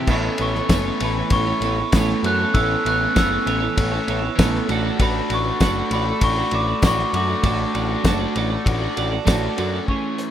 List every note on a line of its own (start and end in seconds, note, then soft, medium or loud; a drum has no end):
0.00 0.10 E4 medium
0.00 0.11 E4 medium
0.07 0.28 A1 loud
0.07 0.69 E3 medium
0.07 0.69 A3 medium
0.07 0.58 A3 medium
0.07 0.39 B3 medium
0.07 0.57 C#4 loud
0.07 0.40 E4 medium
0.07 0.40 A4 loud
0.07 0.42 B5 medium
0.07 kick loud
0.07 crash loud
0.12 0.54 A4 loud
0.12 0.42 C#5 loud
0.38 0.60 A1 medium
0.38 0.70 B3 medium
0.38 0.70 E4 medium
0.38 0.71 A4 medium
0.38 0.98 C#6 medium
0.38 ride medium
0.42 0.72 C#5 medium
0.55 0.71 A3 medium
0.55 0.72 C#4 medium
0.55 0.73 A4 medium
0.55 snare soft
0.69 0.90 F#1 medium
0.69 0.98 E3 medium
0.69 1.66 A3 medium
0.69 1.01 A3 loud
0.69 1.00 B3 medium
0.69 1.02 C#4 loud
0.69 0.87 E4 medium
0.69 0.86 A4 loud
0.69 0.85 C#5 loud
0.69 kick loud
0.69 snare loud
0.69 ride loud
0.69 tambourine loud
0.74 1.02 A4 loud
0.85 1.01 E4 medium
0.85 1.02 A4 medium
0.85 1.04 C#5 medium
1.00 1.21 A1 loud
1.00 1.30 E3 medium
1.00 1.17 A3 medium
1.00 1.47 B3 medium
1.00 1.17 C#4 medium
1.00 1.18 E4 medium
1.00 1.17 A4 medium
1.00 1.18 A4 medium
1.00 ride medium
1.04 1.16 C#5 medium
1.04 1.34 B5 medium
1.17 1.48 E4 medium
1.17 1.47 A4 medium
1.17 1.46 C#5 medium
1.17 muted overdriven electric guitar stroke medium
1.30 1.51 A1 loud
1.30 1.78 E3 medium
1.30 1.49 A3 medium
1.30 1.48 C#4 medium
1.30 2.27 C#6 loud
1.30 kick loud
1.30 ride loud
1.35 1.46 A4 medium
1.46 1.79 A3 medium
1.46 1.78 C#4 medium
1.46 1.62 E4 medium
1.46 1.78 A4 medium
1.46 1.64 A4 medium
1.46 1.65 C#5 medium
1.61 1.82 A1 medium
1.61 1.94 B3 medium
1.61 1.80 E4 medium
1.61 1.79 A4 medium
1.61 ride medium
1.65 1.78 C#5 medium
1.78 1.94 E4 medium
1.78 1.96 A4 medium
1.78 1.96 C#5 medium
1.78 muted overdriven electric guitar stroke medium
1.92 2.13 A1 medium
1.92 2.23 E3 medium
1.92 2.53 A3 loud
1.92 2.25 A3 medium
1.92 2.23 B3 loud
1.92 2.26 C#4 loud
1.92 2.24 E4 medium
1.92 2.27 A4 medium
1.92 2.25 A4 loud
1.92 2.27 C#5 loud
1.92 kick loud
1.92 snare loud
1.92 ride loud
1.92 tambourine loud
2.09 snare soft
2.23 2.44 F#2 loud
2.23 2.53 E3 medium
2.23 2.41 A3 medium
2.23 2.53 B3 medium
2.23 2.40 C#4 medium
2.23 2.40 E4 medium
2.23 2.40 A4 medium
2.23 2.38 C#5 medium
2.23 2.54 F#6 loud
2.23 ride medium
2.28 2.39 A4 medium
2.39 2.56 A3 medium
2.39 2.56 C#4 medium
2.39 2.54 E4 medium
2.39 2.57 A4 medium
2.39 2.56 A4 medium
2.39 2.56 C#5 medium
2.53 2.75 A1 loud
2.53 3.15 E3 medium
2.53 3.14 A3 medium
2.53 3.04 A3 medium
2.53 2.84 B3 medium
2.53 3.03 C#4 loud
2.53 2.85 E4 loud
2.53 2.86 A4 medium
2.53 2.88 C#5 medium
2.53 2.83 E6 loud
2.53 kick loud
2.53 ride medium
2.58 3.01 A4 loud
2.85 3.06 A1 medium
2.85 3.15 B3 medium
2.85 3.15 E4 medium
2.85 3.16 A4 medium
2.85 3.17 C#5 medium
2.85 3.18 F#6 loud
2.85 ride medium
3.01 3.17 A3 medium
3.01 3.19 C#4 medium
3.01 3.19 A4 medium
3.15 3.37 F#1 medium
3.15 3.45 E3 medium
3.15 4.10 A3 medium
3.15 3.46 A3 medium
3.15 3.44 B3 loud
3.15 3.32 E4 medium
3.15 3.32 A4 medium
3.15 3.30 C#5 medium
3.15 3.74 E6 medium
3.15 kick loud
3.15 snare loud
3.15 ride medium
3.15 tambourine medium
3.19 3.47 C#4 loud
3.19 3.49 A4 loud
3.30 3.45 E4 medium
3.30 3.47 A4 medium
3.30 3.48 C#5 medium
3.45 3.67 A1 medium
3.45 3.75 E3 medium
3.45 3.62 A3 medium
3.45 3.92 B3 medium
3.45 3.62 C#4 medium
3.45 3.62 E4 medium
3.45 3.61 A4 medium
3.45 3.62 A4 medium
3.45 3.60 C#5 medium
3.45 ride medium
3.61 3.94 E4 medium
3.61 3.93 A4 medium
3.61 3.91 C#5 medium
3.61 muted overdriven electric guitar stroke medium
3.76 3.98 A1 medium
3.76 4.23 E3 medium
3.76 3.95 A3 medium
3.76 3.93 C#4 medium
3.76 3.91 A4 medium
3.76 kick loud
3.76 ride loud
3.91 4.22 A3 medium
3.91 4.22 C#4 medium
3.91 4.07 E4 medium
3.91 4.21 A4 medium
3.91 4.09 A4 medium
3.91 4.10 C#5 medium
4.07 4.28 A1 medium
4.07 4.38 B3 medium
4.07 4.24 E4 medium
4.07 4.24 A4 medium
4.07 4.22 C#5 medium
4.07 ride medium
4.22 4.39 E4 medium
4.22 4.40 A4 medium
4.22 4.40 C#5 medium
4.22 muted overdriven electric guitar stroke soft
4.36 4.59 A1 medium
4.36 4.66 E3 medium
4.36 4.66 A3 loud
4.36 4.68 A3 medium
4.36 4.68 B3 loud
4.36 4.68 C#4 medium
4.36 4.69 A4 loud
4.36 kick loud
4.36 snare loud
4.36 ride loud
4.36 tambourine loud
4.40 4.68 E4 medium
4.40 4.70 A4 loud
4.40 4.71 C#5 loud
4.55 snare soft
4.66 4.89 A1 medium
4.66 4.97 A3 loud
4.66 4.98 A3 medium
4.66 4.85 D4 loud
4.66 4.87 F#4 loud
4.66 4.81 F#4 loud
4.66 ride medium
4.71 4.86 A4 loud
4.71 4.84 D5 loud
4.82 4.99 D4 medium
4.82 5.01 F#4 medium
4.82 5.01 D5 medium
4.86 5.00 F#4 medium
4.86 5.01 A4 medium
4.98 5.20 A1 loud
4.98 5.60 A3 medium
4.98 5.47 D4 loud
4.98 5.30 F#4 loud
4.98 5.44 F#4 loud
4.98 5.31 A4 loud
4.98 5.32 D5 loud
4.98 kick loud
4.98 ride loud
5.02 5.32 B5 medium
5.30 5.50 A1 loud
5.30 5.61 F#4 medium
5.30 5.62 A4 medium
5.30 5.63 D5 medium
5.30 ride medium
5.34 5.95 C#6 loud
5.44 5.62 D4 medium
5.44 5.63 F#4 medium
5.60 5.81 F#1 medium
5.60 6.82 A3 medium
5.60 5.90 A3 medium
5.60 5.92 D4 loud
5.60 5.78 F#4 medium
5.60 5.93 F#4 loud
5.60 5.77 A4 loud
5.60 5.75 D5 medium
5.60 kick loud
5.60 snare loud
5.60 ride medium
5.60 tambourine medium
5.76 5.93 F#4 medium
5.76 5.94 A4 medium
5.76 5.94 D5 medium
5.91 6.11 A1 medium
5.91 6.20 A3 medium
5.91 6.06 D4 medium
5.91 6.09 F#4 medium
5.91 6.06 F#4 medium
5.91 6.08 A4 medium
5.91 6.06 D5 loud
5.91 6.21 B5 loud
5.91 ride medium
6.07 6.39 F#4 medium
6.07 6.38 A4 medium
6.07 6.36 D5 medium
6.07 muted overdriven electric guitar stroke medium
6.21 6.42 A1 medium
6.21 6.82 A3 medium
6.21 6.38 D4 medium
6.21 6.35 F#4 medium
6.21 6.54 C#6 loud
6.21 kick loud
6.21 ride loud
6.36 6.68 D4 medium
6.36 6.67 F#4 medium
6.36 6.54 A4 medium
6.36 6.53 D5 medium
6.40 6.52 F#4 medium
6.51 6.72 A1 medium
6.51 6.69 F#4 medium
6.51 6.69 A4 medium
6.51 6.67 D5 medium
6.51 6.85 D6 medium
6.51 ride medium
6.68 6.83 F#4 medium
6.68 6.84 A4 medium
6.68 6.84 D5 medium
6.68 muted overdriven electric guitar stroke medium
6.82 7.03 A1 medium
6.82 7.12 A3 medium
6.82 7.43 A3 medium
6.82 7.13 D4 medium
6.82 7.13 F#4 loud
6.82 7.15 F#4 loud
6.82 7.15 A4 medium
6.82 7.15 D5 loud
6.82 kick loud
6.82 snare loud
6.82 ride medium
6.82 tambourine loud
6.86 6.99 C#6 loud
6.99 snare soft
7.12 7.33 F#2 medium
7.12 7.42 A3 medium
7.12 7.29 D4 medium
7.12 7.30 F#4 medium
7.12 7.26 F#4 loud
7.12 7.28 A4 medium
7.12 7.26 D5 medium
7.12 9.24 D6 loud
7.12 ride medium
7.27 7.44 D4 medium
7.27 7.45 F#4 medium
7.27 7.44 F#4 medium
7.27 7.44 A4 medium
7.27 7.45 D5 medium
7.43 7.64 A1 loud
7.43 8.03 A3 medium
7.43 8.02 A3 loud
7.43 7.91 D4 loud
7.43 7.73 F#4 medium
7.43 7.87 F#4 loud
7.43 7.74 A4 medium
7.43 7.75 D5 medium
7.43 kick loud
7.43 ride loud
7.74 7.95 A1 medium
7.74 8.04 F#4 medium
7.74 8.05 A4 medium
7.74 8.06 D5 medium
7.74 ride medium
7.88 8.05 D4 medium
7.88 8.06 F#4 medium
8.03 8.25 F#1 loud
8.03 8.50 A3 medium
8.03 8.33 A3 medium
8.03 8.35 D4 loud
8.03 8.21 F#4 medium
8.03 8.36 F#4 loud
8.03 8.19 A4 medium
8.03 8.18 D5 medium
8.03 kick loud
8.03 snare loud
8.03 ride medium
8.03 tambourine medium
8.19 8.35 F#4 medium
8.19 8.36 A4 medium
8.19 8.37 D5 medium
8.34 8.56 A1 medium
8.34 8.63 A3 medium
8.34 8.50 D4 medium
8.34 8.51 F#4 medium
8.34 8.49 F#4 medium
8.34 8.50 A4 medium
8.34 8.49 D5 loud
8.34 ride medium
8.50 8.83 F#4 medium
8.50 8.82 A4 medium
8.50 8.80 D5 medium
8.50 muted overdriven electric guitar stroke medium
8.65 8.86 A1 loud
8.65 9.11 A3 medium
8.65 8.82 D4 medium
8.65 8.78 F#4 medium
8.65 kick loud
8.65 ride medium
8.79 9.12 D4 medium
8.79 9.11 F#4 medium
8.79 8.97 D5 medium
8.84 8.95 F#4 medium
8.84 8.96 A4 medium
8.97 9.17 A1 loud
8.97 9.12 F#4 medium
8.97 9.11 A4 medium
8.97 9.10 D5 medium
8.97 ride medium
9.11 9.26 F#4 medium
9.11 9.26 A4 medium
9.11 9.26 D5 medium
9.11 muted overdriven electric guitar stroke medium
9.25 9.47 A1 medium
9.25 9.55 A3 medium
9.25 9.86 A3 medium
9.25 9.56 D4 medium
9.25 9.56 F#4 medium
9.25 9.58 F#4 loud
9.25 9.58 A4 medium
9.25 9.59 D5 loud
9.25 kick loud
9.25 snare loud
9.25 ride medium
9.25 tambourine loud
9.56 9.78 F#2 medium
9.56 9.85 A3 medium
9.56 9.86 C#4 medium
9.56 9.73 D4 medium
9.56 9.75 F#4 medium
9.56 9.70 F#4 medium
9.56 9.74 A4 medium
9.56 ride medium
9.60 9.72 D5 medium
9.71 9.86 D4 medium
9.71 9.85 F#4 medium
9.71 9.87 A4 medium
9.71 9.86 D5 medium
9.76 9.88 F#4 medium
9.86 10.31 E3 medium
9.86 10.31 A3 medium
9.86 10.31 C#4 medium
9.86 10.31 C#6 medium
9.86 kick medium
9.90 10.31 E4 medium
9.90 10.31 G#4 medium
9.90 10.31 C#5 medium
10.18 closed hi-hat medium